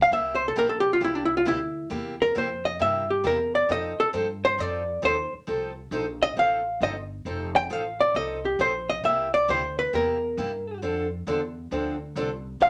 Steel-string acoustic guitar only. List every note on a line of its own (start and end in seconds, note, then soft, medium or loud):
0.11 0.35 C3 medium
0.11 0.35 G3 medium
0.11 0.35 A#3 medium
0.11 0.35 E4 medium
0.11 0.35 G4 medium
0.56 0.68 C3 medium
0.56 0.68 G3 medium
0.56 0.68 A#3 medium
0.56 0.69 E4 medium
0.56 0.69 G4 medium
1.00 1.24 C3 medium
1.00 1.24 G3 medium
1.00 1.24 A#3 medium
1.00 1.24 E4 medium
1.00 1.24 G4 medium
1.45 1.58 C3 medium
1.45 1.58 G3 medium
1.45 1.58 A#3 medium
1.45 1.58 E4 medium
1.45 1.58 G4 medium
1.90 2.13 C3 medium
1.90 2.13 G3 medium
1.90 2.13 A#3 medium
1.90 2.14 E4 medium
1.90 2.14 G4 medium
2.35 2.47 C3 medium
2.35 2.47 G3 medium
2.35 2.47 A#3 medium
2.35 2.48 E4 medium
2.35 2.47 G4 medium
2.79 3.03 C3 medium
2.79 3.03 G3 medium
2.79 3.03 A#3 medium
2.79 3.03 E4 medium
2.79 3.03 G4 medium
3.24 3.36 C3 medium
3.24 3.36 G3 medium
3.24 3.37 A#3 medium
3.24 3.37 E4 medium
3.24 3.37 G4 medium
3.69 3.92 F3 medium
3.69 3.92 C4 medium
3.69 3.92 D#4 medium
3.69 3.92 A4 medium
4.13 4.25 F3 medium
4.13 4.26 C4 medium
4.13 4.26 D#4 medium
4.13 4.26 A4 medium
4.58 4.81 F3 medium
4.58 4.81 C4 medium
4.58 4.81 D#4 medium
4.58 4.81 A4 medium
5.02 5.15 F3 medium
5.02 5.15 C4 medium
5.02 5.15 D#4 medium
5.02 5.15 A4 medium
5.47 5.70 F3 medium
5.47 5.70 C4 medium
5.47 5.70 D#4 medium
5.47 5.71 A4 medium
5.92 6.04 F3 medium
5.92 6.04 C4 medium
5.92 6.04 D#4 medium
5.92 6.05 A4 medium
6.36 6.59 F3 medium
6.36 6.60 C4 medium
6.36 6.60 D#4 medium
6.36 6.60 A4 medium
6.81 6.93 F3 medium
6.81 6.94 C4 medium
6.81 6.94 D#4 medium
6.81 6.94 A4 medium
7.26 7.49 F3 medium
7.26 7.49 C4 medium
7.26 7.49 D#4 medium
7.26 7.49 A4 medium
7.70 7.82 F3 medium
7.70 7.82 C4 medium
7.70 7.83 D#4 medium
7.70 7.83 A4 medium
8.14 8.38 F3 medium
8.14 8.38 C4 medium
8.14 8.38 D#4 medium
8.14 8.38 A4 medium
8.59 8.71 F3 medium
8.59 8.72 C4 medium
8.59 8.72 D#4 medium
8.59 8.72 A4 medium
9.04 9.27 C3 medium
9.04 9.27 G3 medium
9.04 9.27 A#3 medium
9.04 9.27 E4 medium
9.04 9.27 G4 medium
9.48 9.61 C3 medium
9.48 9.61 G3 medium
9.48 9.61 A#3 medium
9.48 9.61 E4 medium
9.48 9.61 G4 medium
9.93 10.16 C3 medium
9.93 10.16 G3 medium
9.93 10.16 A#3 medium
9.93 10.16 E4 medium
9.93 10.16 G4 medium
10.38 10.50 C3 medium
10.38 10.50 G3 medium
10.38 10.50 A#3 medium
10.38 10.50 E4 medium
10.38 10.50 G4 medium
10.82 11.05 D3 medium
10.82 11.05 F3 medium
10.82 11.06 C4 medium
10.82 11.06 D4 medium
10.82 11.06 A4 medium
11.27 11.39 D3 medium
11.27 11.39 F3 medium
11.27 11.39 C4 medium
11.27 11.40 D4 medium
11.27 11.40 A4 medium
11.72 11.95 D3 medium
11.72 11.95 F3 medium
11.72 11.95 C4 medium
11.72 11.95 D4 medium
11.72 11.95 A4 medium
12.16 12.28 D3 medium
12.16 12.28 F3 medium
12.16 12.29 C4 medium
12.16 12.29 D4 medium
12.16 12.29 A4 medium
12.61 12.70 D3 medium
12.61 12.70 F3 medium
12.61 12.70 B3 medium
12.61 12.70 D4 medium
12.61 12.70 G4 medium